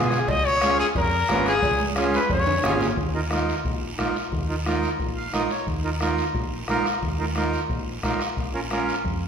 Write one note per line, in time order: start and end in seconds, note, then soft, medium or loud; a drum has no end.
0.00 0.22 B2 medium
0.00 0.18 B3 medium
0.00 0.18 F4 medium
0.00 0.18 G#4 medium
0.00 0.31 G#4 medium
0.11 bombo rim medium
0.11 short guiro medium
0.28 0.82 C#2 medium
0.28 0.47 D#5 loud
0.28 bombo low medium
0.28 cowbell loud
0.28 long guiro medium
0.45 0.78 C#5 loud
0.61 0.86 C#4 medium
0.61 0.86 F4 medium
0.61 0.86 G#4 medium
0.61 bombo rim medium
0.61 cowbell medium
0.61 high conga medium
0.61 short guiro medium
0.79 0.86 G#4 medium
0.79 short guiro medium
0.95 1.23 F2 loud
0.95 1.44 A#4 medium
0.95 bombo low medium
0.95 cowbell medium
0.95 long guiro medium
1.29 1.56 G#1 medium
1.29 1.53 C#4 medium
1.29 1.53 F4 medium
1.29 1.54 B4 medium
1.29 bombo rim medium
1.29 cowbell medium
1.29 high conga medium
1.29 low timbale medium
1.29 short guiro medium
1.46 1.85 G#4 loud
1.46 bombo rim medium
1.46 short guiro medium
1.62 2.17 C#2 medium
1.62 bombo low medium
1.62 cowbell loud
1.62 long guiro medium
1.80 high conga medium
1.96 2.20 C#4 medium
1.96 2.20 F4 medium
1.96 2.20 G#4 medium
1.96 bombo rim medium
1.96 cowbell medium
1.96 high conga medium
1.96 short guiro medium
2.14 2.30 B4 medium
2.14 high conga medium
2.14 short guiro medium
2.30 2.57 F2 loud
2.30 2.79 C#5 medium
2.30 bombo low medium
2.30 cowbell medium
2.30 long guiro medium
2.47 low conga medium
2.47 high timbale medium
2.64 2.91 G#1 medium
2.64 2.87 C#4 medium
2.64 2.88 F4 medium
2.64 2.88 G#4 medium
2.64 bombo rim medium
2.64 cowbell medium
2.64 low conga medium
2.64 low timbale medium
2.64 short guiro medium
2.80 low conga medium
2.80 low timbale medium
2.80 short guiro medium
2.97 3.51 D#2 medium
2.97 bombo low medium
2.97 long guiro medium
3.15 3.20 D#4 medium
3.15 3.20 F4 medium
3.15 3.21 A#4 medium
3.31 3.55 D#4 medium
3.31 3.55 F4 medium
3.31 3.55 A#4 medium
3.31 bombo rim medium
3.31 high conga medium
3.31 short guiro medium
3.49 short guiro medium
3.65 3.92 A#1 loud
3.65 bombo low medium
3.65 long guiro medium
3.98 4.13 A#1 medium
3.98 4.16 D#4 medium
3.98 4.16 F4 medium
3.98 4.17 A#4 medium
3.98 bombo rim medium
3.98 high conga medium
3.98 short guiro medium
4.16 short guiro medium
4.32 4.86 D#2 medium
4.32 bombo low medium
4.32 long guiro medium
4.49 4.55 D#4 medium
4.49 4.55 F4 medium
4.49 4.55 A#4 medium
4.66 4.90 D#4 medium
4.66 4.90 F4 medium
4.66 4.90 A#4 medium
4.66 bombo rim medium
4.66 high conga medium
4.66 short guiro medium
4.83 short guiro medium
4.99 5.26 A#1 loud
4.99 bombo low medium
4.99 long guiro medium
5.17 5.33 F5 medium
5.33 5.48 A#1 medium
5.33 5.51 D#4 medium
5.33 5.51 F4 medium
5.33 5.52 A#4 medium
5.33 5.49 D#5 medium
5.33 bombo rim medium
5.33 high conga medium
5.33 short guiro medium
5.51 5.66 C#5 medium
5.51 short guiro medium
5.67 6.21 D#2 medium
5.67 bombo low medium
5.67 long guiro medium
5.84 5.90 D#4 medium
5.84 5.90 F4 medium
5.84 5.90 A#4 medium
6.01 6.25 D#4 medium
6.01 6.25 F4 medium
6.01 6.25 A#4 medium
6.01 bombo rim medium
6.01 high conga medium
6.01 short guiro medium
6.18 short guiro medium
6.35 6.62 A#1 loud
6.35 bombo low medium
6.35 long guiro medium
6.68 6.82 A#1 medium
6.68 6.87 D#4 medium
6.68 6.87 F4 medium
6.68 6.87 A#4 medium
6.68 bombo rim medium
6.68 high conga medium
6.68 short guiro medium
6.85 bombo rim medium
6.85 short guiro medium
7.02 7.56 D#2 medium
7.02 bombo low medium
7.02 long guiro medium
7.19 7.25 D#4 medium
7.19 7.25 F4 medium
7.19 7.26 A#4 medium
7.19 high conga medium
7.36 7.60 D#4 medium
7.36 7.60 F4 medium
7.36 7.60 A#4 medium
7.36 bombo rim medium
7.36 high conga medium
7.36 short guiro medium
7.54 short guiro medium
7.69 7.97 A#1 medium
7.69 bombo low medium
7.69 long guiro medium
8.03 8.17 A#1 medium
8.03 8.21 D#4 medium
8.03 8.21 F4 medium
8.03 8.21 A#4 medium
8.03 bombo low medium
8.03 bombo rim medium
8.03 high conga medium
8.03 short guiro medium
8.20 bombo rim medium
8.20 short guiro medium
8.37 8.91 A#1 medium
8.37 bombo low medium
8.37 long guiro medium
8.54 8.60 C#4 medium
8.54 8.60 F4 medium
8.54 8.60 A#4 medium
8.71 8.95 C#4 medium
8.71 8.95 F4 medium
8.71 8.95 A#4 medium
8.71 bombo rim medium
8.71 high conga medium
8.71 short guiro medium
8.89 short guiro medium
9.05 9.28 F2 medium
9.05 bombo low medium
9.05 long guiro medium